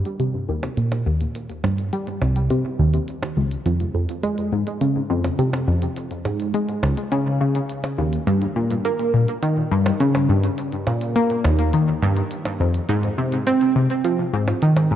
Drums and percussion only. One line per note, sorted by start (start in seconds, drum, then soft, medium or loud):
0.05 closed hi-hat soft
0.20 closed hi-hat medium
0.63 closed hi-hat soft
0.63 percussion blips medium
0.77 closed hi-hat medium
0.92 closed hi-hat soft
0.92 percussion blips medium
1.21 closed hi-hat medium
1.35 closed hi-hat medium
1.50 closed hi-hat soft
1.64 percussion blips medium
1.78 closed hi-hat medium
1.93 closed hi-hat medium
2.07 closed hi-hat soft
2.22 percussion blips medium
2.36 closed hi-hat medium
2.50 closed hi-hat medium
2.94 closed hi-hat medium
3.08 closed hi-hat medium
3.23 closed hi-hat soft
3.23 percussion blips medium
3.51 closed hi-hat medium
3.66 closed hi-hat medium
3.80 closed hi-hat soft
4.09 closed hi-hat medium
4.23 closed hi-hat medium
4.38 closed hi-hat soft
4.67 closed hi-hat medium
4.81 closed hi-hat medium
5.24 closed hi-hat medium
5.24 percussion blips medium
5.39 closed hi-hat medium
5.53 closed hi-hat soft
5.53 percussion blips medium
5.82 closed hi-hat medium
5.96 closed hi-hat medium
6.11 closed hi-hat soft
6.25 percussion blips medium
6.40 closed hi-hat medium
6.54 closed hi-hat medium
6.69 closed hi-hat soft
6.83 percussion blips medium
6.97 closed hi-hat medium
7.12 closed hi-hat medium
7.55 closed hi-hat soft
7.70 closed hi-hat medium
7.84 closed hi-hat soft
7.84 percussion blips medium
8.13 closed hi-hat medium
8.27 closed hi-hat medium
8.42 closed hi-hat soft
8.71 closed hi-hat medium
8.85 closed hi-hat medium
9.00 closed hi-hat soft
9.28 closed hi-hat soft
9.43 closed hi-hat medium
9.86 closed hi-hat soft
9.86 percussion blips medium
10.00 closed hi-hat medium
10.15 closed hi-hat soft
10.15 percussion blips medium
10.44 closed hi-hat medium
10.58 closed hi-hat medium
10.72 closed hi-hat soft
10.87 percussion blips medium
11.01 closed hi-hat medium
11.16 closed hi-hat medium
11.30 closed hi-hat soft
11.44 percussion blips medium
11.59 closed hi-hat soft
11.73 closed hi-hat medium
12.17 closed hi-hat soft
12.31 closed hi-hat medium
12.45 closed hi-hat soft
12.45 percussion blips medium
12.74 closed hi-hat soft
12.89 closed hi-hat medium
13.03 closed hi-hat soft
13.32 closed hi-hat soft
13.47 closed hi-hat medium
13.61 closed hi-hat soft
13.90 closed hi-hat soft
14.04 closed hi-hat medium
14.48 closed hi-hat soft
14.48 percussion blips medium
14.62 closed hi-hat medium
14.77 closed hi-hat soft
14.77 percussion blips medium